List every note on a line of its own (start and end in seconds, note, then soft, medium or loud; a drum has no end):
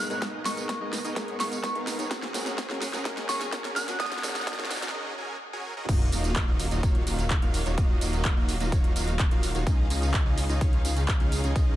0.00 2.07 G#2 medium
0.00 2.07 D#3 medium
0.00 2.07 B3 medium
0.00 0.20 A#4 medium
0.00 0.16 F#6 medium
0.00 riser medium
0.10 0.22 G#2 medium
0.10 0.22 G#3 medium
0.10 0.19 B3 medium
0.10 0.22 B3 medium
0.10 0.19 D#4 medium
0.10 0.22 D#4 medium
0.10 0.19 G#4 medium
0.10 0.19 A#4 medium
0.10 0.22 A#4 medium
0.10 0.19 C#5 medium
0.10 closed hi-hat soft
0.10 tambourine soft
0.22 0.43 B3 loud
0.22 0.43 D#4 medium
0.22 0.43 G#4 medium
0.22 0.43 A#4 medium
0.22 0.43 D#5 loud
0.22 kick loud
0.22 snare medium
0.22 closed hi-hat medium
0.22 tambourine soft
0.45 0.78 G#2 medium
0.45 0.78 G#3 medium
0.45 0.78 B3 medium
0.45 0.78 D#4 medium
0.45 0.78 G#4 medium
0.45 0.78 A#4 medium
0.45 0.78 D#5 medium
0.45 0.63 C#6 medium
0.45 snare medium
0.45 open hi-hat loud
0.45 tambourine medium
0.57 closed hi-hat medium
0.57 tambourine soft
0.69 kick loud
0.69 snare medium
0.69 closed hi-hat medium
0.69 tambourine soft
0.80 0.93 G#2 medium
0.80 0.93 G#3 medium
0.80 0.93 B3 medium
0.80 0.99 B3 medium
0.80 0.99 D#4 medium
0.80 0.93 D#4 medium
0.80 0.99 G#4 medium
0.80 0.99 A#4 medium
0.80 0.93 A#4 medium
0.80 0.99 D#5 medium
0.93 snare medium
0.93 open hi-hat medium
0.93 tambourine medium
1.04 1.15 B3 medium
1.04 1.15 D#4 medium
1.04 1.15 G#4 medium
1.04 1.15 A#4 medium
1.04 1.15 D#5 medium
1.04 closed hi-hat medium
1.04 tambourine soft
1.16 1.60 G#2 medium
1.16 1.61 G#3 medium
1.16 1.37 B3 medium
1.16 1.61 B3 medium
1.16 1.37 D#4 medium
1.16 1.61 D#4 medium
1.16 1.37 G#4 medium
1.16 1.37 A#4 medium
1.16 1.61 A#4 medium
1.16 1.37 C#5 loud
1.16 kick loud
1.16 snare medium
1.16 closed hi-hat medium
1.16 tambourine soft
1.28 closed hi-hat soft
1.40 1.58 B3 medium
1.40 1.58 D#4 medium
1.40 1.58 G#4 medium
1.40 1.58 A#4 medium
1.40 1.58 F5 medium
1.40 1.87 C#6 medium
1.40 snare medium
1.40 open hi-hat loud
1.40 tambourine medium
1.52 closed hi-hat medium
1.52 tambourine soft
1.63 1.96 G#2 medium
1.63 1.96 G#3 medium
1.63 1.96 B3 medium
1.63 1.96 D#4 medium
1.63 1.96 A#4 medium
1.63 kick loud
1.63 snare medium
1.63 closed hi-hat medium
1.63 tambourine soft
1.75 1.96 B3 medium
1.75 1.96 D#4 medium
1.75 1.96 G#4 medium
1.75 1.96 A#4 medium
1.75 1.96 F5 loud
1.75 closed hi-hat soft
1.87 snare medium
1.87 open hi-hat loud
1.87 tambourine medium
1.98 2.09 G#3 medium
1.98 2.09 B3 medium
1.98 2.08 B3 medium
1.98 2.08 D#4 medium
1.98 2.09 D#4 medium
1.98 2.08 G#4 medium
1.98 2.08 A#4 medium
1.98 2.10 A#4 medium
1.98 2.08 C#5 medium
1.98 closed hi-hat medium
1.98 tambourine soft
2.11 4.91 F#2 medium
2.11 4.91 C#3 medium
2.11 4.91 A#3 medium
2.11 2.32 C#4 loud
2.11 2.32 F#4 medium
2.11 2.32 G#4 medium
2.11 3.98 G#4 medium
2.11 2.32 A#4 medium
2.11 2.31 F#5 loud
2.11 kick loud
2.11 snare medium
2.11 closed hi-hat medium
2.11 tambourine soft
2.23 snare medium
2.34 2.67 G#3 medium
2.34 2.67 C#4 medium
2.34 2.67 F#4 medium
2.34 2.67 G#4 medium
2.34 2.67 A#4 medium
2.34 2.67 F#5 medium
2.34 snare medium
2.34 open hi-hat loud
2.34 tambourine medium
2.46 snare medium
2.46 closed hi-hat medium
2.46 tambourine soft
2.58 kick loud
2.58 snare loud
2.58 closed hi-hat medium
2.58 tambourine soft
2.69 2.82 G#3 medium
2.69 2.82 C#4 medium
2.69 2.88 C#4 medium
2.69 2.88 F#4 medium
2.69 2.82 F#4 medium
2.69 2.88 G#4 medium
2.69 2.88 A#4 medium
2.69 2.82 A#4 loud
2.69 2.88 F#5 medium
2.69 snare medium
2.82 snare medium
2.82 open hi-hat medium
2.82 tambourine medium
2.93 3.03 C#4 medium
2.93 3.03 F#4 medium
2.93 3.03 G#4 medium
2.93 3.03 A#4 medium
2.93 3.03 F#5 medium
2.93 snare medium
2.93 closed hi-hat medium
2.93 tambourine soft
3.05 3.49 G#3 medium
3.05 3.50 C#4 medium
3.05 3.26 C#4 medium
3.05 3.26 F#4 medium
3.05 3.50 F#4 medium
3.05 3.26 G#4 medium
3.05 3.26 A#4 medium
3.05 3.50 A#4 loud
3.05 3.26 D#5 loud
3.05 kick loud
3.05 snare loud
3.05 closed hi-hat medium
3.05 tambourine soft
3.17 snare medium
3.17 closed hi-hat soft
3.29 3.47 C#4 medium
3.29 3.47 F#4 medium
3.29 3.47 G#4 medium
3.29 3.47 A#4 medium
3.29 3.47 G#5 medium
3.29 3.46 C#6 medium
3.29 snare loud
3.29 open hi-hat loud
3.29 tambourine medium
3.41 snare medium
3.41 closed hi-hat medium
3.41 tambourine soft
3.52 3.85 G#3 medium
3.52 3.85 C#4 medium
3.52 3.85 F#4 medium
3.52 3.85 A#4 loud
3.52 kick loud
3.52 snare loud
3.52 closed hi-hat medium
3.52 tambourine soft
3.64 3.85 C#4 medium
3.64 3.85 F#4 medium
3.64 3.85 G#4 medium
3.64 3.85 A#4 medium
3.64 3.85 G#5 medium
3.64 snare medium
3.64 closed hi-hat soft
3.76 3.94 F#6 loud
3.76 snare loud
3.76 open hi-hat medium
3.76 tambourine medium
3.87 4.00 G#3 medium
3.87 4.00 C#4 medium
3.87 3.97 C#4 medium
3.87 3.97 F#4 medium
3.87 4.00 F#4 medium
3.87 3.97 G#4 medium
3.87 3.97 A#4 medium
3.87 4.00 A#4 loud
3.87 3.97 D#5 medium
3.87 snare medium
3.87 closed hi-hat medium
3.87 tambourine soft
4.00 4.21 C#4 loud
4.00 4.93 F#4 medium
4.00 4.21 F#4 loud
4.00 4.21 G#4 loud
4.00 4.21 A#4 loud
4.00 4.21 F#5 loud
4.00 4.66 D#6 medium
4.00 kick loud
4.00 snare loud
4.00 closed hi-hat medium
4.00 tambourine soft
4.06 snare medium
4.12 snare medium
4.12 closed hi-hat soft
4.18 snare medium
4.23 4.56 G#3 medium
4.23 4.56 C#4 medium
4.23 4.56 F#4 medium
4.23 4.56 G#4 medium
4.23 4.56 A#4 medium
4.23 4.56 F#5 medium
4.23 snare loud
4.23 open hi-hat loud
4.23 tambourine medium
4.29 snare loud
4.35 snare medium
4.35 closed hi-hat medium
4.35 tambourine soft
4.41 snare loud
4.47 kick loud
4.47 snare loud
4.47 closed hi-hat medium
4.47 tambourine soft
4.53 snare medium
4.58 4.71 G#3 medium
4.58 4.71 C#4 medium
4.58 4.77 C#4 medium
4.58 4.77 F#4 medium
4.58 4.71 F#4 medium
4.58 4.77 G#4 medium
4.58 4.77 A#4 medium
4.58 4.71 A#4 loud
4.58 4.77 F#5 medium
4.58 snare medium
4.65 snare medium
4.71 snare loud
4.71 open hi-hat loud
4.71 tambourine medium
4.76 snare medium
4.82 4.92 C#4 medium
4.82 4.92 F#4 medium
4.82 4.92 G#4 medium
4.82 4.92 A#4 medium
4.82 4.92 F#5 medium
4.82 snare loud
4.82 closed hi-hat medium
4.82 tambourine soft
4.88 snare medium
4.94 5.15 C#4 medium
4.94 5.15 F#4 medium
4.94 5.15 G#4 medium
4.94 5.15 A#4 medium
4.94 5.15 D#5 loud
5.18 5.36 C#4 medium
5.18 5.36 F#4 medium
5.18 5.36 G#4 medium
5.18 5.36 A#4 medium
5.18 5.36 G#5 medium
5.53 5.74 C#4 medium
5.53 5.74 F#4 medium
5.53 5.74 G#4 medium
5.53 5.74 A#4 medium
5.53 5.74 G#5 medium
5.77 5.86 C#4 medium
5.77 5.86 F#4 medium
5.77 5.86 G#4 medium
5.77 5.86 A#4 medium
5.77 5.86 D#5 medium
5.89 6.10 D#1 loud
5.89 9.63 D#3 medium
5.89 9.63 F#3 medium
5.89 6.09 A#3 loud
5.89 9.63 A#3 medium
5.89 6.09 D#4 loud
5.89 6.09 F4 medium
5.89 6.09 F#4 medium
5.89 6.09 D#5 loud
5.89 11.76 F5 medium
5.89 kick loud
5.89 closed hi-hat medium
5.89 crash loud
5.89 tambourine soft
5.89 sub drop medium
6.12 6.45 D#1 loud
6.12 6.45 A#3 medium
6.12 6.45 D#4 medium
6.12 6.45 F4 medium
6.12 6.45 F#4 medium
6.12 6.45 D#5 medium
6.12 open hi-hat loud
6.12 tambourine medium
6.24 closed hi-hat medium
6.24 tambourine soft
6.36 kick loud
6.36 clap loud
6.36 closed hi-hat medium
6.48 6.69 D#1 loud
6.48 6.66 A#3 medium
6.48 6.66 D#4 medium
6.48 6.66 F4 medium
6.48 6.66 F#4 medium
6.48 6.66 D#5 medium
6.60 open hi-hat loud
6.60 tambourine medium
6.71 6.81 D#1 loud
6.71 6.81 A#3 medium
6.71 6.81 D#4 medium
6.71 6.81 F4 medium
6.71 6.81 F#4 medium
6.71 6.81 D#5 medium
6.71 closed hi-hat medium
6.71 tambourine soft
6.83 7.04 D#1 loud
6.83 7.04 A#3 medium
6.83 7.04 D#4 medium
6.83 7.04 F4 medium
6.83 7.04 F#4 medium
6.83 7.04 C#5 loud
6.83 kick loud
6.83 closed hi-hat medium
6.83 tambourine soft
6.95 closed hi-hat soft
7.07 7.40 D#1 loud
7.07 7.25 A#3 medium
7.07 7.25 D#4 medium
7.07 7.25 F4 medium
7.07 7.25 F#4 medium
7.07 7.25 F5 medium
7.07 open hi-hat loud
7.07 tambourine medium
7.19 closed hi-hat medium
7.19 tambourine soft
7.30 kick loud
7.30 clap loud
7.30 closed hi-hat medium
7.30 tambourine soft
7.42 7.64 D#1 loud
7.42 7.63 A#3 medium
7.42 7.63 D#4 medium
7.42 7.63 F4 medium
7.42 7.63 F#4 medium
7.42 7.63 F5 medium
7.42 closed hi-hat soft
7.54 open hi-hat loud
7.54 tambourine medium
7.66 7.75 D#1 loud
7.66 7.75 A#3 medium
7.66 7.75 D#4 medium
7.66 7.75 F4 medium
7.66 7.75 F#4 medium
7.66 7.75 C#5 medium
7.66 closed hi-hat medium
7.66 tambourine soft
7.78 7.99 D#1 loud
7.78 7.99 A#3 loud
7.78 7.99 D#4 medium
7.78 7.99 F4 medium
7.78 7.99 F#4 medium
7.78 7.98 D#5 loud
7.78 kick loud
7.78 closed hi-hat medium
7.78 tambourine soft
8.01 8.34 D#1 loud
8.01 8.34 A#3 medium
8.01 8.34 D#4 medium
8.01 8.34 F4 medium
8.01 8.34 F#4 medium
8.01 8.34 D#5 medium
8.01 open hi-hat loud
8.01 tambourine medium
8.13 closed hi-hat medium
8.13 tambourine soft
8.25 kick loud
8.25 clap loud
8.25 closed hi-hat medium
8.25 tambourine soft
8.37 8.58 D#1 loud
8.37 8.55 A#3 medium
8.37 8.55 D#4 medium
8.37 8.55 F4 medium
8.37 8.55 F#4 medium
8.37 8.55 D#5 medium
8.49 open hi-hat loud
8.49 tambourine medium
8.60 8.70 D#1 loud
8.60 8.70 A#3 medium
8.60 8.70 D#4 medium
8.60 8.70 F4 medium
8.60 8.70 F#4 medium
8.60 8.70 D#5 medium
8.60 closed hi-hat medium
8.60 tambourine soft
8.72 8.93 D#1 loud
8.72 8.93 A#3 loud
8.72 8.93 D#4 medium
8.72 8.93 F4 medium
8.72 8.93 F#4 medium
8.72 8.93 C#5 loud
8.72 kick loud
8.72 closed hi-hat medium
8.72 tambourine soft
8.84 closed hi-hat soft
8.96 9.29 D#1 loud
8.96 9.14 A#3 medium
8.96 9.14 D#4 medium
8.96 9.14 F4 medium
8.96 9.14 F#4 medium
8.96 9.14 F5 medium
8.96 open hi-hat loud
8.96 tambourine medium
9.08 closed hi-hat medium
9.08 tambourine soft
9.19 kick loud
9.19 clap loud
9.19 closed hi-hat medium
9.19 tambourine soft
9.31 9.52 D#1 medium
9.31 9.52 A#3 medium
9.31 9.52 D#4 medium
9.31 9.52 F4 medium
9.31 9.52 F#4 medium
9.31 9.52 F5 loud
9.31 closed hi-hat soft
9.43 open hi-hat loud
9.43 tambourine medium
9.55 9.64 D#1 medium
9.55 9.64 A#3 medium
9.55 9.64 D#4 medium
9.55 9.64 F4 medium
9.55 9.64 F#4 medium
9.55 9.64 C#5 medium
9.55 closed hi-hat medium
9.55 tambourine soft
9.67 9.88 C#2 loud
9.67 11.76 C#3 medium
9.67 11.76 C#4 medium
9.67 9.88 C#4 loud
9.67 11.76 D#4 medium
9.67 9.87 D#4 loud
9.67 9.88 F4 medium
9.67 9.88 G#4 medium
9.67 9.88 D#5 loud
9.67 kick loud
9.67 closed hi-hat medium
9.67 tambourine soft
9.90 10.23 C#2 loud
9.90 10.23 C#4 medium
9.90 10.23 D#4 medium
9.90 10.23 F4 medium
9.90 10.23 G#4 medium
9.90 10.23 D#5 medium
9.90 open hi-hat loud
9.90 tambourine medium
10.02 closed hi-hat medium
10.02 tambourine soft
10.14 kick loud
10.14 clap loud
10.14 closed hi-hat medium
10.14 tambourine soft
10.26 10.47 C#2 loud
10.26 10.44 C#4 medium
10.26 10.44 D#4 medium
10.26 10.44 F4 medium
10.26 10.44 G#4 medium
10.26 10.44 D#5 medium
10.38 open hi-hat loud
10.38 tambourine medium
10.49 10.59 C#2 medium
10.49 10.59 C#4 medium
10.49 10.59 D#4 medium
10.49 10.59 F4 medium
10.49 10.59 G#4 medium
10.49 10.59 D#5 medium
10.49 closed hi-hat medium
10.49 tambourine soft
10.61 10.82 C#2 loud
10.61 10.82 C#4 medium
10.61 10.82 D#4 medium
10.61 10.82 F4 medium
10.61 10.82 G#4 medium
10.61 10.82 C#5 loud
10.61 kick loud
10.61 closed hi-hat medium
10.61 tambourine soft
10.73 closed hi-hat soft
10.85 11.18 C#2 loud
10.85 11.03 C#4 medium
10.85 11.03 D#4 medium
10.85 11.03 F4 medium
10.85 11.03 G#4 medium
10.85 11.03 F5 medium
10.85 open hi-hat loud
10.85 tambourine medium
10.97 closed hi-hat medium
10.97 tambourine soft
11.08 kick loud
11.08 clap loud
11.08 closed hi-hat medium
11.08 tambourine soft
11.20 11.41 C#2 loud
11.20 11.41 C#4 medium
11.20 11.41 D#4 medium
11.20 11.41 F4 medium
11.20 11.41 G#4 medium
11.20 11.41 F5 loud
11.20 closed hi-hat soft
11.32 open hi-hat loud
11.32 tambourine medium
11.44 11.53 C#2 loud
11.44 11.53 C#4 medium
11.44 11.53 D#4 medium
11.44 11.53 F4 medium
11.44 11.53 G#4 medium
11.44 11.53 C#5 medium
11.44 closed hi-hat medium
11.44 tambourine soft
11.56 11.76 C#2 loud
11.56 11.76 C#4 loud
11.56 11.76 D#4 medium
11.56 11.76 F4 medium
11.56 11.76 G#4 loud
11.56 11.76 D#5 loud
11.56 kick loud
11.56 closed hi-hat medium
11.56 tambourine soft